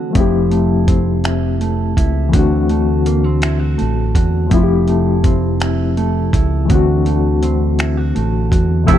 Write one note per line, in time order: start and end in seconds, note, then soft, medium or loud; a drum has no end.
0.00 0.15 D3 medium
0.00 0.10 A3 medium
0.00 0.51 A3 medium
0.00 0.11 C4 medium
0.00 0.87 C4 medium
0.00 0.13 D4 medium
0.00 0.14 F#4 medium
0.00 0.16 F#4 medium
0.10 2.27 F3 medium
0.10 2.28 A3 medium
0.15 1.94 F1 medium
0.15 2.33 F3 medium
0.15 2.30 C4 medium
0.15 1.23 E4 medium
0.15 2.31 E4 medium
0.15 kick medium
0.15 closed hi-hat medium
0.20 2.32 G4 medium
0.51 1.61 A3 medium
0.51 closed hi-hat soft
0.88 3.06 C4 soft
0.88 kick medium
0.88 closed hi-hat medium
1.24 1.96 E4 medium
1.24 finger snap medium
1.24 closed hi-hat medium
1.61 2.69 A3 medium
1.61 closed hi-hat soft
1.97 2.30 C#2 medium
1.97 2.33 E4 medium
1.97 kick medium
1.97 closed hi-hat medium
2.29 4.45 E3 medium
2.29 4.47 A3 medium
2.33 3.75 D2 medium
2.33 4.52 D3 medium
2.33 4.48 C4 medium
2.33 4.49 D4 medium
2.33 3.42 F#4 medium
2.33 kick medium
2.33 closed hi-hat medium
2.39 4.50 F#4 medium
2.69 3.78 A3 medium
2.69 closed hi-hat soft
3.06 3.24 A#3 medium
3.06 closed hi-hat medium
3.24 4.59 C4 soft
3.42 3.59 E4 medium
3.42 finger snap medium
3.42 closed hi-hat medium
3.59 4.14 F#4 soft
3.78 4.13 A1 medium
3.78 4.89 A3 medium
3.78 closed hi-hat soft
4.15 4.48 E2 medium
4.15 4.52 F#4 medium
4.15 kick medium
4.15 closed hi-hat medium
4.47 6.63 F3 medium
4.47 6.65 A3 medium
4.51 6.30 F1 medium
4.51 6.70 F3 medium
4.51 6.66 C4 medium
4.51 5.61 E4 medium
4.51 6.67 E4 medium
4.51 kick loud
4.51 closed hi-hat medium
4.57 4.61 F4 medium
4.63 6.72 G4 medium
4.88 5.97 A3 medium
4.88 closed hi-hat soft
5.24 7.42 C4 medium
5.24 kick medium
5.24 closed hi-hat medium
5.60 6.33 E4 medium
5.60 finger snap medium
5.60 closed hi-hat medium
5.97 7.06 A3 medium
5.97 closed hi-hat soft
6.33 6.67 C#2 medium
6.33 6.70 E4 medium
6.33 kick medium
6.33 closed hi-hat medium
6.65 8.82 E3 medium
6.65 8.83 A3 medium
6.70 8.12 D2 medium
6.70 8.86 D3 medium
6.70 8.84 C4 medium
6.70 8.86 D4 medium
6.70 7.78 F#4 medium
6.70 kick medium
6.70 closed hi-hat medium
6.75 8.87 F#4 medium
7.06 8.15 A3 medium
7.06 closed hi-hat soft
7.43 8.98 C4 medium
7.43 closed hi-hat medium
7.79 7.97 E4 medium
7.79 finger snap loud
7.79 closed hi-hat medium
7.97 8.50 F#4 medium
8.15 8.49 A1 medium
8.15 8.98 A3 soft
8.15 closed hi-hat medium
8.51 8.85 E2 medium
8.51 8.95 F#4 medium
8.51 kick medium
8.51 closed hi-hat medium
8.84 8.98 C3 medium
8.84 8.98 F3 medium
8.84 8.98 A3 medium
8.84 8.98 A3 loud
8.84 8.98 E4 loud
8.88 8.98 F2 loud
8.88 8.98 C3 medium
8.88 8.98 C4 medium
8.88 8.98 E4 medium
8.88 kick loud
8.88 closed hi-hat medium
8.94 8.98 G4 medium